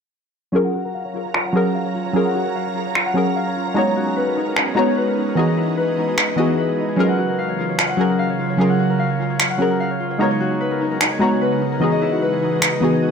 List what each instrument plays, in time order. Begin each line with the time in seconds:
0.52 synth pluck F#3 C#4 G#4 A#4, ambient pad F#3 C#4 A#5, harp F4
0.65 harp F#5
0.74 harp F#4
0.84 harp A#4
0.94 harp F5
1.04 harp C#5
1.14 harp F4
1.25 harp C#5
1.34 harp F4, finger snap
1.45 harp F#5
1.53 synth pluck F#3 C#4 G#4, harp F#4
1.57 synth pluck A#4
1.65 harp A#4
1.75 harp F5
1.85 harp C#5
1.95 harp F4
2.05 harp C#5
2.13 synth pluck F#3 C#4 G#4 A#4, harp F4
2.25 harp F#5
2.35 harp F#4
2.45 harp A#4
2.55 harp F5
2.66 harp C#5
2.75 harp F4
2.86 harp C#5
2.95 harp F4, finger snap
3.06 harp F#5
3.14 synth pluck F#3 C#4 G#4
3.18 synth pluck A#4
3.26 harp A#4
3.36 harp F5
3.46 harp C#5
3.56 harp F4
3.67 harp C#5
3.74 synth pluck G#3 B3 D#4 F#4 C#5 A#5, ambient pad G#3 B3 F#4, harp D#4
3.87 harp C#5
3.96 harp F#4
4.07 harp G#4
4.16 harp B4
4.27 harp A#4
4.36 harp D#4
4.47 harp A#4
4.56 harp D#4, finger snap
4.67 harp C#5
4.75 synth pluck G#3 B3 D#4 F#4 A#5, harp F#4
4.79 synth pluck C#5
4.87 harp G#4
4.97 harp B4
5.07 harp A#4
5.17 harp D#4
5.28 harp A#4
5.35 synth pluck E3 B3 F#4 D#5, ambient pad E3 D#5, harp D#4
5.39 synth pluck G#4
5.48 harp D#5
5.57 harp E4
5.68 harp F#4
5.77 harp B4
5.88 harp G#4
5.97 harp D#4
6.08 harp G#4
6.18 harp D#4, finger snap
6.28 harp D#5
6.36 synth pluck E3 B3 F#4 D#5, harp E4
6.40 synth pluck G#4
6.48 harp F#4
6.58 harp B4
6.68 harp G#4
6.78 harp D#4
6.89 harp G#4
6.96 ambient pad C#3 F#3, synth pluck F#3 C#4 G#4 A#4, harp F4
7.09 harp F#5
7.18 harp F#4
7.29 harp A#4
7.39 harp F5
7.49 harp C#5
7.59 harp F4
7.69 harp C#5
7.79 harp F4, finger snap
7.89 harp F#5
7.97 synth pluck F#3 C#4 G#4 A#4, harp F#4
8.09 harp A#4
8.19 harp F5
8.29 harp C#5
8.39 harp F4
8.49 harp C#5
8.57 synth pluck F#3 C#4 G#4, harp F4
8.61 synth pluck A#4
8.70 harp F#5
8.79 harp F#4
8.90 harp A#4
8.99 harp F5
9.10 harp C#5
9.20 harp F4
9.30 harp C#5
9.40 harp F4, finger snap
9.50 harp F#5
9.58 synth pluck F#3 C#4 G#4 A#4, harp F#4
9.70 harp A#4
9.80 harp F5
9.90 harp C#5
10.00 harp F4
10.11 harp C#5
10.18 ambient pad C#3 G#3 B3 F#4, synth pluck G#3 B3 D#4 F#4 C#5 A#5, harp D#4
10.31 harp C#5
10.40 harp F#4
10.51 harp G#4
10.61 harp B4
10.71 harp A#4
10.81 harp D#4
10.91 harp A#4
11.01 harp D#4, finger snap
11.11 harp C#5
11.19 synth pluck G#3 B3 D#4 F#4 A#5, harp F#4
11.23 synth pluck C#5
11.32 harp G#4
11.41 harp B4
11.52 harp A#4
11.62 harp D#4
11.72 harp A#4
11.79 synth pluck E3 B3 F#4 G#4 D#5, ambient pad E3 G#3 D#5, harp D#4
11.92 harp D#5
12.02 harp E4
12.12 harp F#4
12.22 harp B4
12.32 harp G#4
12.42 harp D#4
12.52 harp G#4
12.62 harp D#4, finger snap
12.72 harp D#5
12.80 synth pluck E3 B3 D#4 F#4 G#4, harp D#4
12.93 harp G#4
13.02 harp F#4